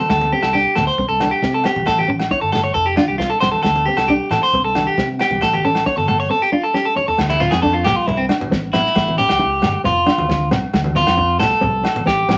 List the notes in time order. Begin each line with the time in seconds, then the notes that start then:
0.09 D2 A3 A4, kick, snare, low agogo
0.21 high conga
0.32 C4 G4
0.42 C2 A4, snare, low agogo
0.53 D4 G4, kick
0.75 D2 A3 A4, snare, low conga, low agogo
0.87 C5
0.98 C2 C4, kick
1.09 C2 A4
1.20 D4, snare, high conga, low agogo
1.31 G4
1.43 C3 C4, kick, snare
1.54 A4
1.64 C4 G4, snare, low agogo
1.76 A#1, high conga
1.86 A1 A3 A4, kick, snare, low agogo
1.98 G4, high conga
2.08 A1 C#4, muted clean electric guitar stroke
2.20 snare, low agogo
2.31 E4 C#5, kick
2.41 G1 A4
2.52 A3 A4, snare, low conga, low agogo
2.64 C#5
2.74 F1 A4, muted nylon-string guitar stroke, kick
2.86 G4
2.97 D4 F4, snare, high conga, low agogo
3.08 C2 G4
3.18 C4 F4, kick, snare
3.30 A4
3.40 C2 C4 C5, snare, low conga, low agogo
3.52 A4, high conga
3.63 D2 A3 A4, kick, snare, low agogo
3.76 high conga
3.85 C4 G4
3.97 C2 A4, snare, low agogo
4.08 D4 G4, kick
4.30 A1 A3 A4, snare, low conga, low agogo
4.43 C5
4.53 C2 C4, kick
4.64 C2 A4
4.75 D4, snare, high conga, low agogo
4.87 G4
4.98 C3 C4, kick, snare
5.19 C4 G4, snare, low agogo
5.31 C2, high conga
5.41 A1 A3 A4, kick, snare, low agogo
5.53 G4, high conga
5.65 A1 C#4 A4
5.75 snare, low agogo
5.86 C#5, muted nylon-string guitar stroke, kick
5.97 G1 A4, high conga
6.08 A3 A4, low conga, low agogo
6.20 C#5
6.30 C4 A4
6.42 G4
6.52 D4 F4
6.63 A4
6.74 C#4 G4, snare
6.85 A4
6.96 C#4 C#5, mid tom
7.08 A4, floor tom
7.18 D2 A3, kick, snare, crash, low agogo
7.30 E4, high conga
7.40 C4 F4, snare, low conga
7.51 F2 G#4, snare, low agogo
7.62 D4 A4, kick
7.73 F4
7.84 C2 A3 G4, snare, low conga, low agogo
7.96 F4
8.06 C2 C4 E4, kick, low conga
8.17 C4
8.29 D4, snare, low agogo
8.41 A1, high conga
8.51 C4, kick, snare
8.73 A#1 C4 E4, snare, low conga, low agogo
8.85 snare
8.95 A1 A3, kick, snare, low agogo
9.08 high conga
9.18 C#4 G4, low conga
9.29 C#2, snare, low agogo
9.39 E4, kick
9.62 G1 A3, snare, low conga, low agogo
9.84 F1 C4 F4, kick, snare, low conga
10.06 D4, snare, low agogo
10.18 D2, high conga
10.29 C4, kick, snare
10.51 C2 C4, snare, low conga, low agogo
10.74 D2 A3, kick, snare, low agogo
10.84 high conga
10.95 C4 F4, snare, low conga
11.07 F2, snare, low agogo
11.17 muted nylon-string guitar stroke, kick
11.39 C2 A3 A4, snare, low conga, low agogo
11.61 C2 C4, kick, low conga
11.83 muted nylon-string guitar stroke, snare, low agogo
11.96 A1, high conga
12.06 C4 G4, kick, snare
12.28 A#1 C4, snare, low conga, low agogo